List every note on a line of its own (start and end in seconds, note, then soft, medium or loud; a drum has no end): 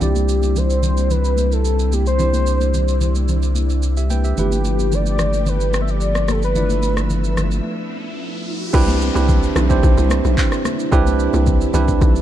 0.00 4.33 C2 medium
0.00 4.34 D3 medium
0.00 4.34 G3 medium
0.00 2.14 C4 medium
0.00 2.17 C4 medium
0.00 2.15 D4 medium
0.00 2.15 E4 medium
0.00 0.14 F4 medium
0.00 2.16 G4 medium
0.00 0.59 G4 loud
0.00 2.16 D5 medium
0.00 low conga medium
0.00 shaker medium
0.15 high conga medium
0.15 shaker medium
0.29 shaker medium
0.42 high conga medium
0.42 shaker medium
0.56 1.12 C5 loud
0.56 low conga medium
0.56 shaker medium
0.70 shaker medium
0.83 low conga medium
0.83 shaker medium
0.97 high conga soft
0.97 shaker medium
1.10 1.54 B4 loud
1.10 low conga medium
1.10 shaker medium
1.25 shaker medium
1.37 high conga medium
1.37 shaker medium
1.52 1.95 A4 loud
1.52 shaker soft
1.65 shaker medium
1.79 shaker medium
1.92 2.07 G4 medium
1.92 high conga medium
1.92 shaker medium
2.06 3.12 C5 medium
2.06 shaker soft
2.18 4.33 C4 medium
2.18 4.33 D4 medium
2.18 4.35 D4 medium
2.18 4.34 E4 medium
2.18 3.53 G4 medium
2.18 3.54 C5 medium
2.18 low conga medium
2.18 shaker medium
2.33 high conga medium
2.33 shaker medium
2.47 shaker medium
2.60 high conga medium
2.60 shaker medium
2.74 low conga medium
2.74 shaker medium
2.88 shaker medium
3.01 low conga medium
3.01 shaker medium
3.15 high conga soft
3.15 shaker medium
3.28 low conga medium
3.28 shaker medium
3.43 shaker medium
3.55 high conga medium
3.55 shaker medium
3.70 shaker soft
3.83 shaker medium
3.97 4.10 G4 medium
3.97 4.10 E5 medium
3.97 shaker medium
4.10 4.24 B4 medium
4.10 4.24 G5 medium
4.10 high conga medium
4.10 shaker medium
4.24 4.51 G4 medium
4.24 4.50 E5 medium
4.24 shaker soft
4.36 7.61 G1 medium
4.36 8.70 F3 medium
4.36 6.51 A3 medium
4.36 8.70 A3 medium
4.36 8.70 B3 medium
4.36 6.51 D4 medium
4.36 6.52 E4 medium
4.36 6.52 F4 medium
4.36 6.54 G4 medium
4.36 4.95 G4 loud
4.36 6.53 B4 medium
4.36 low conga medium
4.36 shaker medium
4.51 high conga medium
4.51 shaker medium
4.65 shaker medium
4.78 high conga medium
4.78 shaker medium
4.92 5.50 D5 loud
4.92 low conga medium
4.92 shaker medium
5.06 shaker soft
5.19 cross-stick medium
5.19 low conga medium
5.19 shaker medium
5.33 high conga soft
5.33 shaker medium
5.46 5.81 B4 loud
5.46 low conga medium
5.46 shaker medium
5.61 shaker medium
5.73 cross-stick loud
5.73 high conga medium
5.73 shaker medium
5.82 5.91 E5 medium
5.88 6.32 D5 loud
5.88 shaker soft
6.01 shaker medium
6.15 cross-stick medium
6.15 shaker medium
6.28 6.44 A4 medium
6.28 cross-stick medium
6.28 high conga medium
6.28 shaker medium
6.42 7.49 B4 medium
6.42 shaker soft
6.54 8.69 A3 medium
6.54 8.70 D4 medium
6.54 8.70 E4 medium
6.54 8.70 F4 medium
6.54 8.71 D5 medium
6.54 8.72 E5 medium
6.54 riser medium
6.54 low conga medium
6.54 shaker medium
6.69 high conga medium
6.69 shaker medium
6.83 shaker medium
6.96 cross-stick medium
6.96 high conga medium
6.96 shaker medium
7.10 low conga medium
7.10 shaker medium
7.24 shaker medium
7.37 cross-stick medium
7.37 low conga medium
7.37 shaker medium
7.51 high conga soft
7.51 shaker medium
8.73 9.10 C2 loud
8.73 9.06 C4 loud
8.73 9.07 D4 loud
8.73 9.07 E4 loud
8.73 9.07 G4 loud
8.73 9.07 B4 loud
8.73 kick loud
8.73 crash loud
8.73 downlifter medium
8.73 shaker medium
8.88 high conga medium
8.88 shaker medium
9.01 shaker medium
9.14 9.51 C2 loud
9.14 9.58 C4 medium
9.14 9.58 D4 medium
9.14 9.59 E4 medium
9.14 9.59 G4 medium
9.14 9.59 B4 loud
9.14 high conga medium
9.14 shaker medium
9.29 kick loud
9.29 low conga medium
9.29 shaker medium
9.43 shaker medium
9.56 9.80 B1 loud
9.56 cross-stick loud
9.56 low conga medium
9.56 shaker medium
9.69 10.56 C4 medium
9.69 10.57 D4 medium
9.69 10.57 E4 medium
9.69 10.57 G4 medium
9.69 10.57 C5 loud
9.69 kick loud
9.69 high conga medium
9.69 shaker medium
9.83 9.96 B1 loud
9.83 kick loud
9.83 low conga medium
9.83 shaker medium
9.97 10.21 C2 medium
9.97 shaker medium
10.09 cross-stick loud
10.09 high conga medium
10.09 shaker medium
10.25 10.36 B1 medium
10.25 shaker soft
10.38 kick loud
10.38 clap loud
10.38 shaker medium
10.52 cross-stick medium
10.52 shaker medium
10.65 cross-stick medium
10.65 high conga medium
10.65 shaker medium
10.79 shaker medium
10.91 11.29 C2 loud
10.91 11.58 C4 loud
10.91 11.58 D4 loud
10.91 11.58 E4 loud
10.91 11.58 G4 loud
10.91 11.58 B4 loud
10.91 kick loud
10.91 shaker medium
11.06 high conga medium
11.06 shaker medium
11.20 shaker medium
11.33 11.69 C2 medium
11.33 high conga medium
11.33 shaker medium
11.47 kick loud
11.47 low conga medium
11.47 shaker medium
11.61 shaker medium
11.73 11.98 C2 medium
11.73 12.22 C4 medium
11.73 12.22 D4 medium
11.73 12.22 E4 medium
11.73 12.22 G4 medium
11.73 12.22 B4 loud
11.73 low conga medium
11.73 shaker medium
11.88 kick medium
11.88 high conga medium
11.88 shaker medium
12.01 12.22 B1 loud
12.01 kick loud
12.01 low conga medium
12.01 shaker medium
12.16 shaker medium